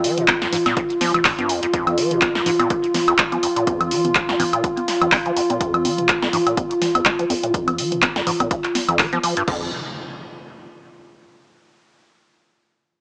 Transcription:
Already playing: analog synth pad F4
0.04 acid bass F3, open hi-hat
0.17 acid bass A#2, closed hi-hat, low conga
0.28 kick, clap, closed hi-hat, high conga
0.42 acid bass F2, snare, closed hi-hat
0.53 acid bass G#2, open hi-hat, low conga
0.66 acid bass A#2, snare, closed hi-hat, high conga, high woodblock
0.77 acid bass D#2, kick, closed hi-hat
0.90 closed hi-hat
1.01 acid bass F3, snare, open hi-hat, high conga
1.14 acid bass F1, closed hi-hat, low conga, high woodblock
1.25 acid bass A#2, kick, clap, open hi-hat
1.39 acid bass G2, closed hi-hat, high conga
1.49 acid bass F2, open hi-hat
1.63 acid bass F2, closed hi-hat
1.73 acid bass F2, analog synth pad F4, kick, closed hi-hat
1.87 closed hi-hat, high conga, low conga, high woodblock
1.98 acid bass F3, open hi-hat
2.11 acid bass A#2, closed hi-hat, low conga
2.21 kick, clap, closed hi-hat, high conga
2.35 acid bass F2, snare
2.46 acid bass G#2, open hi-hat, low conga
2.59 acid bass A#2, closed hi-hat, high conga, high woodblock
2.70 acid bass D#2, kick, closed hi-hat
2.84 closed hi-hat
2.94 snare, open hi-hat, high conga, low conga
3.08 acid bass F2, closed hi-hat, high woodblock
3.18 acid bass G#3, kick, clap, closed hi-hat
3.32 acid bass F3, closed hi-hat, high conga
3.43 acid bass F2, open hi-hat
3.56 acid bass A#2, closed hi-hat
3.67 acid bass F2, kick, closed hi-hat, high conga
3.81 closed hi-hat, low conga, high woodblock
3.91 acid bass F3, open hi-hat
4.05 acid bass A#2, closed hi-hat, high conga, low conga
4.15 kick, clap, closed hi-hat
4.29 acid bass F2, snare
4.40 acid bass G#2, open hi-hat, high conga, low conga
4.53 acid bass A#2, closed hi-hat, high woodblock
4.64 acid bass D#2, kick, closed hi-hat
4.77 closed hi-hat, high conga
4.88 snare, open hi-hat
5.01 acid bass F2, closed hi-hat, low conga, high woodblock
5.12 acid bass G#3, kick, clap, open hi-hat, high conga
5.26 acid bass F3, closed hi-hat
5.36 acid bass F2, open hi-hat
5.50 acid bass A#2, closed hi-hat, high conga
5.61 acid bass F2, kick, closed hi-hat
5.74 closed hi-hat, low conga, high woodblock
5.85 acid bass F3, open hi-hat, high conga
5.98 acid bass A#2, closed hi-hat, low conga
6.09 kick, clap, closed hi-hat
6.22 acid bass F2, snare, high conga
6.33 acid bass G#2, open hi-hat, low conga
6.47 acid bass A#2, closed hi-hat, high woodblock
6.57 acid bass D#2, kick, closed hi-hat, high conga
6.71 closed hi-hat
6.82 snare, open hi-hat, low conga
6.95 acid bass F2, closed hi-hat, high conga, high woodblock
7.05 acid bass G#3, kick, clap, closed hi-hat
7.19 acid bass F3, closed hi-hat
7.30 acid bass F2, open hi-hat, high conga
7.43 acid bass A#2, closed hi-hat
7.54 acid bass F2, kick, closed hi-hat
7.68 closed hi-hat, high conga, low conga, high woodblock
7.78 acid bass F3, open hi-hat
7.92 acid bass A#2, closed hi-hat, low conga
8.02 kick, clap, closed hi-hat, high conga
8.16 acid bass F2, snare, closed hi-hat
8.27 acid bass G#2, open hi-hat, low conga
8.40 acid bass A#2, kick, closed hi-hat, high conga, high woodblock
8.51 acid bass D#2, kick, closed hi-hat
8.64 clap, closed hi-hat
8.75 snare, open hi-hat, high conga
8.88 acid bass F2, closed hi-hat, low conga, high woodblock
8.99 acid bass F3, kick, clap, open hi-hat
9.13 acid bass F3, closed hi-hat, high conga
9.23 acid bass F3, open hi-hat
9.37 acid bass G2, closed hi-hat
9.48 acid bass F2, kick, crash, impact

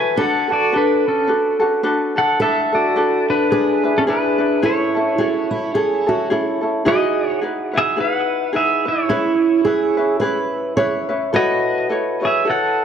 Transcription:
Already playing: ukulele E4 F#4 A4, steel-string acoustic guitar F#4, pedal steel guitar B4 G#5
0.16 ukulele D4 F#4 A4 B4, steel-string acoustic guitar A4
0.21 pedal steel guitar A4 F#5
0.48 ukulele D4 F#4 A4
0.52 pedal steel guitar F#4 D5
0.72 ukulele D4 F#4 A4 B4, pedal steel guitar D4
0.77 pedal steel guitar B4
1.08 pedal steel guitar C#4 A4
1.27 ukulele D4 F#4 A4 B4
1.60 ukulele D4 F#4 A4
1.83 ukulele D4 F#4 A4 B4
2.16 ukulele D4 F#4 A4, pedal steel guitar A4 F#5
2.40 ukulele D4 E4 A4 B4, steel-string acoustic guitar A4, pedal steel guitar A4 E5
2.72 ukulele D4 E4 A4, pedal steel guitar F#4 D5
2.96 ukulele D4 E4 A4 B4
3.30 pedal steel guitar D4 B4
3.51 ukulele D4 E4 G#4 B4, steel-string acoustic guitar G#4
3.83 ukulele D4 E4 B4
3.98 pedal steel guitar C#4 A4
4.07 ukulele D4 E4 G#4 B4, pedal steel guitar D4 B4
4.38 ukulele D4 E4 B4
4.62 ukulele C#4 E4 G#4 A4, steel-string acoustic guitar E4, pedal steel guitar E4 C#5
4.95 ukulele C#4 E4 A4
5.18 ukulele C#4 E4 G#4 A4, steel-string acoustic guitar F#4
5.51 steel-string acoustic guitar E4
5.74 ukulele C#4 E4 G#4 A4, steel-string acoustic guitar G#4
6.07 ukulele C#4 E4 A4, steel-string acoustic guitar F#4
6.30 ukulele C#4 E4 G#4 A4, steel-string acoustic guitar E4
6.61 ukulele C#4 E4 A4
6.85 ukulele D#4 E4 G#4 B4, steel-string acoustic guitar F#4, pedal steel guitar G#4 D#5
7.28 pedal steel guitar C#5
7.41 ukulele D#4 E4 G#4 B4
7.73 ukulele D#4 E4 B4
7.78 pedal steel guitar G#4 E5
7.97 ukulele D#4 E4 G#4 B4, pedal steel guitar B4 F#5
8.53 ukulele D#4 E4 G#4 B4, pedal steel guitar G#4 E5
8.85 ukulele D#4 E4 B4, pedal steel guitar E4 C#5
9.09 ukulele C#4 E4 G#4 B4, steel-string acoustic guitar E4
9.65 ukulele C#4 E4 G#4 B4, steel-string acoustic guitar G#4
9.97 ukulele C#4 E4 B4
10.20 ukulele C#4 E4 G#4 B4, steel-string acoustic guitar B4
10.77 ukulele C#4 E4 G#4 B4, steel-string acoustic guitar C#5
11.09 ukulele C#4 E4 B4
11.33 ukulele E4 F#4 A4 C#5, steel-string acoustic guitar B4, pedal steel guitar D#5
11.37 pedal steel guitar F#4
11.89 ukulele E4 F#4 A4 C#5
12.21 ukulele E4 F#4 C#5
12.25 pedal steel guitar G#4 E5
12.45 ukulele E4 F#4 A4 C#5
12.50 pedal steel guitar A4 F#5

